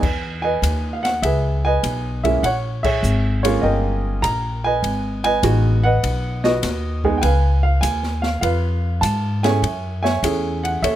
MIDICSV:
0, 0, Header, 1, 4, 480
1, 0, Start_track
1, 0, Key_signature, 4, "major"
1, 0, Tempo, 600601
1, 20, Time_signature, 4, 2, 24, 8
1, 8756, End_track
2, 0, Start_track
2, 0, Title_t, "Upright piano"
2, 0, Program_c, 0, 0
2, 0, Note_on_c, 0, 71, 55
2, 0, Note_on_c, 0, 75, 57
2, 0, Note_on_c, 0, 80, 87
2, 325, Note_off_c, 0, 80, 0
2, 337, Note_on_c, 0, 80, 84
2, 341, Note_off_c, 0, 75, 0
2, 343, Note_off_c, 0, 71, 0
2, 353, Note_on_c, 0, 75, 59
2, 355, Note_on_c, 0, 71, 59
2, 743, Note_on_c, 0, 77, 59
2, 759, Note_off_c, 0, 80, 0
2, 822, Note_on_c, 0, 78, 81
2, 823, Note_off_c, 0, 77, 0
2, 967, Note_off_c, 0, 78, 0
2, 979, Note_on_c, 0, 76, 77
2, 985, Note_off_c, 0, 71, 0
2, 997, Note_on_c, 0, 68, 59
2, 997, Note_on_c, 0, 71, 54
2, 1279, Note_off_c, 0, 75, 0
2, 1284, Note_off_c, 0, 76, 0
2, 1316, Note_on_c, 0, 80, 91
2, 1318, Note_off_c, 0, 71, 0
2, 1328, Note_on_c, 0, 75, 68
2, 1330, Note_on_c, 0, 71, 67
2, 1787, Note_on_c, 0, 76, 75
2, 1794, Note_on_c, 0, 56, 52
2, 1795, Note_on_c, 0, 61, 53
2, 1796, Note_on_c, 0, 58, 49
2, 1799, Note_on_c, 0, 64, 60
2, 1807, Note_off_c, 0, 80, 0
2, 1918, Note_off_c, 0, 68, 0
2, 1920, Note_off_c, 0, 71, 0
2, 1920, Note_off_c, 0, 75, 0
2, 1929, Note_off_c, 0, 56, 0
2, 1930, Note_off_c, 0, 58, 0
2, 1930, Note_off_c, 0, 61, 0
2, 1931, Note_off_c, 0, 64, 0
2, 1944, Note_on_c, 0, 78, 91
2, 1945, Note_off_c, 0, 76, 0
2, 1964, Note_on_c, 0, 73, 62
2, 2017, Note_off_c, 0, 78, 0
2, 2262, Note_on_c, 0, 76, 85
2, 2265, Note_off_c, 0, 73, 0
2, 2277, Note_on_c, 0, 73, 62
2, 2280, Note_on_c, 0, 68, 62
2, 2730, Note_off_c, 0, 73, 0
2, 2742, Note_on_c, 0, 73, 77
2, 2756, Note_on_c, 0, 56, 65
2, 2757, Note_on_c, 0, 58, 60
2, 2760, Note_off_c, 0, 76, 0
2, 2760, Note_on_c, 0, 61, 58
2, 2762, Note_on_c, 0, 65, 67
2, 2875, Note_off_c, 0, 68, 0
2, 2891, Note_on_c, 0, 75, 85
2, 2903, Note_off_c, 0, 73, 0
2, 2905, Note_on_c, 0, 79, 56
2, 2908, Note_on_c, 0, 70, 63
2, 3355, Note_off_c, 0, 56, 0
2, 3355, Note_off_c, 0, 58, 0
2, 3357, Note_off_c, 0, 61, 0
2, 3357, Note_off_c, 0, 65, 0
2, 3376, Note_on_c, 0, 82, 89
2, 3391, Note_off_c, 0, 75, 0
2, 3682, Note_off_c, 0, 82, 0
2, 3711, Note_on_c, 0, 80, 90
2, 3726, Note_on_c, 0, 71, 63
2, 3728, Note_on_c, 0, 75, 65
2, 3831, Note_off_c, 0, 79, 0
2, 3832, Note_off_c, 0, 70, 0
2, 4176, Note_off_c, 0, 80, 0
2, 4188, Note_off_c, 0, 71, 0
2, 4188, Note_off_c, 0, 75, 0
2, 4188, Note_on_c, 0, 80, 105
2, 4200, Note_on_c, 0, 71, 68
2, 4200, Note_on_c, 0, 75, 69
2, 4343, Note_on_c, 0, 56, 56
2, 4344, Note_on_c, 0, 59, 51
2, 4345, Note_on_c, 0, 66, 64
2, 4347, Note_on_c, 0, 63, 52
2, 4636, Note_off_c, 0, 56, 0
2, 4637, Note_off_c, 0, 59, 0
2, 4637, Note_off_c, 0, 66, 0
2, 4638, Note_off_c, 0, 63, 0
2, 4661, Note_off_c, 0, 71, 0
2, 4663, Note_on_c, 0, 78, 95
2, 4669, Note_off_c, 0, 75, 0
2, 4673, Note_on_c, 0, 71, 66
2, 4681, Note_on_c, 0, 75, 65
2, 4682, Note_off_c, 0, 80, 0
2, 5135, Note_off_c, 0, 75, 0
2, 5145, Note_off_c, 0, 71, 0
2, 5147, Note_on_c, 0, 75, 91
2, 5157, Note_on_c, 0, 71, 62
2, 5159, Note_on_c, 0, 66, 60
2, 5160, Note_off_c, 0, 78, 0
2, 5595, Note_off_c, 0, 75, 0
2, 5630, Note_on_c, 0, 56, 71
2, 5630, Note_on_c, 0, 59, 59
2, 5630, Note_on_c, 0, 63, 64
2, 5633, Note_on_c, 0, 68, 76
2, 5735, Note_on_c, 0, 79, 61
2, 5753, Note_off_c, 0, 71, 0
2, 5754, Note_off_c, 0, 66, 0
2, 5766, Note_off_c, 0, 56, 0
2, 5766, Note_off_c, 0, 59, 0
2, 5766, Note_off_c, 0, 63, 0
2, 5766, Note_on_c, 0, 80, 88
2, 5768, Note_off_c, 0, 68, 0
2, 5775, Note_off_c, 0, 79, 0
2, 5775, Note_on_c, 0, 71, 61
2, 5777, Note_on_c, 0, 77, 64
2, 6077, Note_off_c, 0, 80, 0
2, 6086, Note_off_c, 0, 77, 0
2, 6098, Note_on_c, 0, 77, 82
2, 6241, Note_on_c, 0, 80, 83
2, 6245, Note_off_c, 0, 77, 0
2, 6570, Note_on_c, 0, 77, 77
2, 6587, Note_off_c, 0, 80, 0
2, 6705, Note_off_c, 0, 71, 0
2, 6711, Note_off_c, 0, 77, 0
2, 6723, Note_on_c, 0, 77, 75
2, 6732, Note_on_c, 0, 65, 55
2, 6732, Note_on_c, 0, 71, 59
2, 7201, Note_on_c, 0, 81, 80
2, 7226, Note_off_c, 0, 77, 0
2, 7539, Note_on_c, 0, 80, 85
2, 7543, Note_on_c, 0, 57, 63
2, 7547, Note_off_c, 0, 81, 0
2, 7547, Note_on_c, 0, 61, 64
2, 7548, Note_on_c, 0, 68, 70
2, 7550, Note_on_c, 0, 64, 56
2, 7550, Note_on_c, 0, 73, 58
2, 7550, Note_on_c, 0, 76, 58
2, 7663, Note_off_c, 0, 65, 0
2, 7663, Note_off_c, 0, 71, 0
2, 7682, Note_off_c, 0, 57, 0
2, 7684, Note_off_c, 0, 61, 0
2, 7685, Note_off_c, 0, 64, 0
2, 7685, Note_off_c, 0, 68, 0
2, 8000, Note_off_c, 0, 80, 0
2, 8009, Note_off_c, 0, 76, 0
2, 8012, Note_on_c, 0, 80, 84
2, 8013, Note_off_c, 0, 73, 0
2, 8021, Note_on_c, 0, 76, 59
2, 8025, Note_on_c, 0, 73, 63
2, 8181, Note_on_c, 0, 57, 59
2, 8185, Note_on_c, 0, 61, 55
2, 8185, Note_on_c, 0, 64, 56
2, 8188, Note_on_c, 0, 68, 69
2, 8467, Note_off_c, 0, 80, 0
2, 8499, Note_on_c, 0, 78, 80
2, 8640, Note_off_c, 0, 76, 0
2, 8652, Note_on_c, 0, 76, 75
2, 8653, Note_off_c, 0, 73, 0
2, 8660, Note_off_c, 0, 78, 0
2, 8662, Note_on_c, 0, 69, 55
2, 8665, Note_on_c, 0, 73, 60
2, 8756, Note_off_c, 0, 57, 0
2, 8756, Note_off_c, 0, 61, 0
2, 8756, Note_off_c, 0, 64, 0
2, 8756, Note_off_c, 0, 68, 0
2, 8756, Note_off_c, 0, 69, 0
2, 8756, Note_off_c, 0, 73, 0
2, 8756, Note_off_c, 0, 76, 0
2, 8756, End_track
3, 0, Start_track
3, 0, Title_t, "Upright bass"
3, 0, Program_c, 1, 32
3, 20, Note_on_c, 1, 40, 77
3, 486, Note_off_c, 1, 40, 0
3, 497, Note_on_c, 1, 39, 86
3, 965, Note_off_c, 1, 39, 0
3, 977, Note_on_c, 1, 37, 77
3, 1445, Note_off_c, 1, 37, 0
3, 1464, Note_on_c, 1, 35, 75
3, 1929, Note_off_c, 1, 35, 0
3, 1942, Note_on_c, 1, 34, 72
3, 2407, Note_off_c, 1, 34, 0
3, 2419, Note_on_c, 1, 32, 80
3, 2886, Note_off_c, 1, 32, 0
3, 2902, Note_on_c, 1, 31, 76
3, 3367, Note_off_c, 1, 31, 0
3, 3378, Note_on_c, 1, 34, 79
3, 3845, Note_off_c, 1, 34, 0
3, 3857, Note_on_c, 1, 32, 77
3, 4325, Note_off_c, 1, 32, 0
3, 4339, Note_on_c, 1, 33, 93
3, 4805, Note_off_c, 1, 33, 0
3, 4821, Note_on_c, 1, 35, 78
3, 5286, Note_off_c, 1, 35, 0
3, 5297, Note_on_c, 1, 39, 81
3, 5764, Note_off_c, 1, 39, 0
3, 5779, Note_on_c, 1, 37, 80
3, 6245, Note_off_c, 1, 37, 0
3, 6254, Note_on_c, 1, 39, 82
3, 6722, Note_off_c, 1, 39, 0
3, 6731, Note_on_c, 1, 41, 83
3, 7200, Note_off_c, 1, 41, 0
3, 7206, Note_on_c, 1, 44, 82
3, 7678, Note_off_c, 1, 44, 0
3, 7689, Note_on_c, 1, 42, 80
3, 8159, Note_off_c, 1, 42, 0
3, 8173, Note_on_c, 1, 40, 86
3, 8641, Note_off_c, 1, 40, 0
3, 8650, Note_on_c, 1, 39, 79
3, 8756, Note_off_c, 1, 39, 0
3, 8756, End_track
4, 0, Start_track
4, 0, Title_t, "Drums"
4, 21, Note_on_c, 9, 36, 65
4, 23, Note_on_c, 9, 49, 68
4, 101, Note_off_c, 9, 36, 0
4, 103, Note_off_c, 9, 49, 0
4, 507, Note_on_c, 9, 44, 57
4, 507, Note_on_c, 9, 51, 69
4, 587, Note_off_c, 9, 44, 0
4, 587, Note_off_c, 9, 51, 0
4, 838, Note_on_c, 9, 38, 34
4, 838, Note_on_c, 9, 51, 41
4, 918, Note_off_c, 9, 38, 0
4, 918, Note_off_c, 9, 51, 0
4, 985, Note_on_c, 9, 51, 62
4, 1065, Note_off_c, 9, 51, 0
4, 1467, Note_on_c, 9, 44, 49
4, 1467, Note_on_c, 9, 51, 65
4, 1547, Note_off_c, 9, 44, 0
4, 1547, Note_off_c, 9, 51, 0
4, 1793, Note_on_c, 9, 36, 55
4, 1796, Note_on_c, 9, 51, 43
4, 1873, Note_off_c, 9, 36, 0
4, 1876, Note_off_c, 9, 51, 0
4, 1950, Note_on_c, 9, 51, 58
4, 2030, Note_off_c, 9, 51, 0
4, 2272, Note_on_c, 9, 49, 74
4, 2273, Note_on_c, 9, 36, 77
4, 2352, Note_off_c, 9, 49, 0
4, 2353, Note_off_c, 9, 36, 0
4, 2425, Note_on_c, 9, 44, 58
4, 2505, Note_off_c, 9, 44, 0
4, 2755, Note_on_c, 9, 51, 65
4, 2834, Note_off_c, 9, 51, 0
4, 3386, Note_on_c, 9, 44, 54
4, 3386, Note_on_c, 9, 51, 64
4, 3466, Note_off_c, 9, 44, 0
4, 3466, Note_off_c, 9, 51, 0
4, 3867, Note_on_c, 9, 51, 56
4, 3946, Note_off_c, 9, 51, 0
4, 4190, Note_on_c, 9, 51, 43
4, 4270, Note_off_c, 9, 51, 0
4, 4341, Note_on_c, 9, 44, 51
4, 4341, Note_on_c, 9, 51, 61
4, 4421, Note_off_c, 9, 44, 0
4, 4421, Note_off_c, 9, 51, 0
4, 4824, Note_on_c, 9, 51, 63
4, 4904, Note_off_c, 9, 51, 0
4, 5145, Note_on_c, 9, 38, 55
4, 5225, Note_off_c, 9, 38, 0
4, 5298, Note_on_c, 9, 38, 36
4, 5298, Note_on_c, 9, 44, 58
4, 5298, Note_on_c, 9, 51, 65
4, 5377, Note_off_c, 9, 38, 0
4, 5377, Note_off_c, 9, 44, 0
4, 5377, Note_off_c, 9, 51, 0
4, 5626, Note_on_c, 9, 36, 53
4, 5706, Note_off_c, 9, 36, 0
4, 5775, Note_on_c, 9, 51, 65
4, 5855, Note_off_c, 9, 51, 0
4, 6257, Note_on_c, 9, 44, 62
4, 6257, Note_on_c, 9, 51, 74
4, 6337, Note_off_c, 9, 44, 0
4, 6337, Note_off_c, 9, 51, 0
4, 6420, Note_on_c, 9, 38, 29
4, 6500, Note_off_c, 9, 38, 0
4, 6577, Note_on_c, 9, 38, 41
4, 6657, Note_off_c, 9, 38, 0
4, 6737, Note_on_c, 9, 51, 61
4, 6817, Note_off_c, 9, 51, 0
4, 7217, Note_on_c, 9, 44, 54
4, 7217, Note_on_c, 9, 51, 64
4, 7297, Note_off_c, 9, 44, 0
4, 7297, Note_off_c, 9, 51, 0
4, 7546, Note_on_c, 9, 38, 48
4, 7546, Note_on_c, 9, 51, 45
4, 7625, Note_off_c, 9, 38, 0
4, 7625, Note_off_c, 9, 51, 0
4, 7701, Note_on_c, 9, 51, 56
4, 7781, Note_off_c, 9, 51, 0
4, 8032, Note_on_c, 9, 38, 49
4, 8112, Note_off_c, 9, 38, 0
4, 8181, Note_on_c, 9, 44, 53
4, 8181, Note_on_c, 9, 51, 70
4, 8261, Note_off_c, 9, 44, 0
4, 8261, Note_off_c, 9, 51, 0
4, 8511, Note_on_c, 9, 51, 45
4, 8590, Note_off_c, 9, 51, 0
4, 8663, Note_on_c, 9, 51, 68
4, 8743, Note_off_c, 9, 51, 0
4, 8756, End_track
0, 0, End_of_file